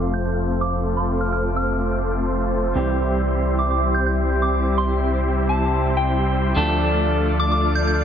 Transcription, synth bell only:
0.14 G6
0.26 G6
0.61 D6
0.97 C6
1.21 F6
1.33 F6
1.56 F6
3.59 D6
3.71 D6
3.94 G6
4.06 G6
4.42 D6
4.78 C6
5.49 A5
5.97 G5
7.40 D6
7.52 D6
7.75 G6
7.87 G6

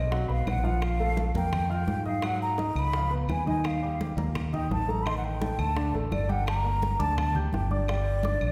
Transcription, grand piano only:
0.11 F#3 F#4 F#5
0.28 B3 B4 B5
0.63 F3 F4 F5
1.00 A3 A4 A5
1.35 A#3 A#4 A#5
1.70 F4 F5 F6
2.05 D#4 D#5 D#6
2.23 F#3 F#4 F#5
2.58 D#4 D#5 D#6
2.94 F3 F4 F5
3.10 B3 B4 B5
3.46 D#3 D#4 D#5
3.83 G3 G4 G5
4.17 A#3 A#4 A#5
4.53 D#4 D#5 D#6
4.88 A3 A4 A5
5.06 D#3 D#4 D#5
5.41 A3 A4 A5
5.76 D3 D4 D5
5.94 A3 A4 A5
6.29 G3 G4 G5
6.64 A#3 A#4 A#5
6.99 D4 D5 D6
7.35 G4 G5 G6
7.71 D4 D5 D6
7.89 G3 G4 G5
8.24 D4 D5 D6

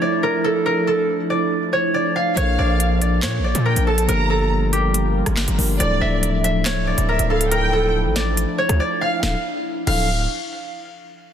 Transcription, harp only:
Already playing: G4 E5
0.02 D5
0.23 A#4
0.44 A4
0.66 A#4
0.87 A4
1.30 D5
1.73 C#5
1.94 D5
2.16 F5
2.37 C#5
2.59 D5
3.01 D5
3.23 C#5
3.44 D5
3.66 A#4
3.87 A4
4.09 A#4
4.30 A4
4.73 G4
5.80 D5
6.01 E5
6.44 E5
6.66 C#5
6.87 D5
7.09 A#4
7.30 A4
7.51 A#4
7.73 A4
8.16 D5
8.58 C#5
8.80 D5
9.01 F5
9.23 F5
9.87 F5

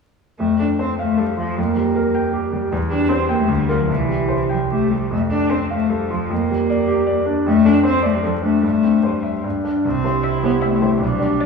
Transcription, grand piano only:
0.40 F2
0.59 A3
0.79 C5
0.99 F5
1.17 A4
1.37 F4
1.58 F2
1.77 G3
1.96 A#4
2.15 G5
2.33 G4
2.53 G3
2.72 E2
2.91 G3
3.10 C5
3.29 G5
3.48 D2
3.69 F4 A#4
3.90 C2
4.09 G3
4.29 C5
4.49 G5
4.71 G4
4.90 G3
5.11 F2
5.31 A3
5.50 C5
5.70 F5
5.90 A4
6.10 F4
6.30 F2
6.51 G3
6.70 D5
6.88 G4
7.07 D5
7.26 D4
7.46 F2
7.65 A3
7.83 C5
8.03 D5
8.23 A4
8.42 D4
8.63 G2
8.84 C4
9.03 C5
9.23 E5
9.44 G2
9.65 D4 D5
9.85 C2
10.04 G3 E4 C5
10.43 G3 E4 C5
10.82 G3 E4 C5
11.00 B1
11.18 G3 D4 D5

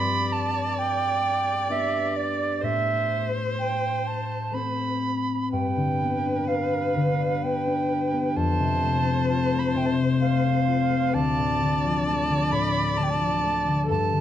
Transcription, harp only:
Already playing: G2 C4 F4 A4
1.70 B3 D4 G4
2.63 A2
4.51 A3 C4
4.56 A4
5.53 G2
5.77 D3
6.01 B3
6.25 D4
6.49 G4
6.72 B3
6.96 D3
7.20 D5
7.43 B3
7.67 D4
7.90 G4
8.13 B3
8.36 F2
8.59 C3
8.82 A3
9.06 C4
9.29 F4
9.53 A3
9.75 C3
9.98 C5
10.22 A3
10.45 C4
10.68 F4
10.89 A3
11.14 D2
11.38 A2
11.61 D3
11.85 F3
12.07 A3
12.30 D3
12.52 A2
12.98 D3
13.19 F3
13.43 A3
13.68 D3
13.89 G2
14.12 D3

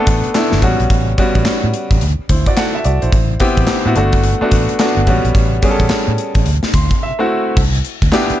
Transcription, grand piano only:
Already playing: A3 B3 D4 F#4 A4
0.34 A3 B3 D4 E4
0.62 G3 B3 C#4 F#4
1.18 G3 B3 C#4 F#4
2.30 E4 C5
2.47 F#4 D5
2.57 A4 F#5
2.75 E5
2.85 F#4 D5
3.02 E4 C5
3.40 B3 C4 E4 G4
3.85 B3 C4 E4 F#4
3.96 A3 B3 D4 F#4
4.41 A3 B3 D4 F#4
4.79 A3 B3 D4 F#4
5.07 G3 B3 C#4 F#4
5.63 G3 B3 C#4 G#4
5.71 A4
6.75 C6
7.03 E5
7.19 A3 C4 E4 F#4
8.13 B3 D4 E4 G4

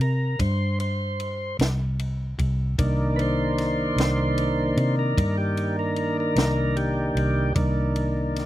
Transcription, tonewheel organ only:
0.01 A#4
0.41 C5
0.80 C5
2.78 D#3 A#3 D4
3.16 B4
3.22 C5
4.99 A#4
5.38 G4
5.79 A#4
6.20 A#4
6.77 G4
7.55 D#3 A#3 D4

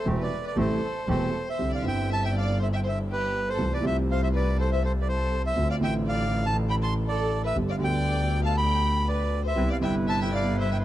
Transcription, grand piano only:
0.05 E1 E2 C3 G3 A3 E4
0.56 A1 A2 C3 G3 A3 E4
1.08 E1 E2 C3 G3 A3 E4
1.59 C2 C3 D3 G3 C4 E4
1.82 G1 G2 D3 G3 C4
1.86 E4
3.58 C2 C3 E3 A3 C4 F4
3.81 C2 C3 A3 C4 E4
3.85 F4
5.56 D2 D3 A3 C4 F4
5.79 A1 A2 D3 A3 C4 F4
7.55 G1 G2 D3 G3 B3 G4
7.78 D2 D3 G3 B3 G4
9.55 C2 C3 G3 B3 E4
9.79 G1 G2 C3 G3 B3 E4

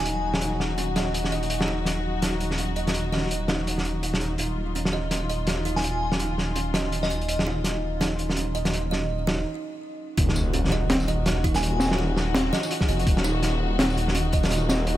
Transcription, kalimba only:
Already playing: D#4
0.41 D#4
0.78 C#4
0.96 D#5
1.32 D#5
1.68 D#4
2.22 D#4
2.59 C#4
2.77 D#5
3.12 D#5
3.49 D#4
4.03 D#4
4.39 D#4
4.75 C#4
4.93 D#5
5.29 D#5
5.65 D#4
6.19 D#4
6.56 C#4
6.74 D#5
7.10 D#5
7.47 D#4
8.01 D#4
8.37 C#4
8.55 D#5
8.91 D#5
9.27 D#4
10.17 D#4
10.53 C#4
10.72 D#5
11.08 D#5
11.44 D#4
11.99 D#4
12.35 C#4
12.53 D#5
12.89 D#5
13.25 D#4
13.79 D#4
14.15 C#4
14.33 D#5
14.70 D#5

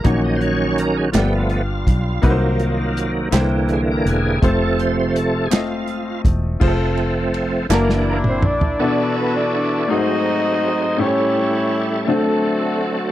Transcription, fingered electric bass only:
0.05 A#1
1.14 G1
1.86 B1
2.23 C2
3.33 C2
4.05 E1
4.42 F1
6.25 E1
6.61 F1
7.70 F#1
8.43 A#1

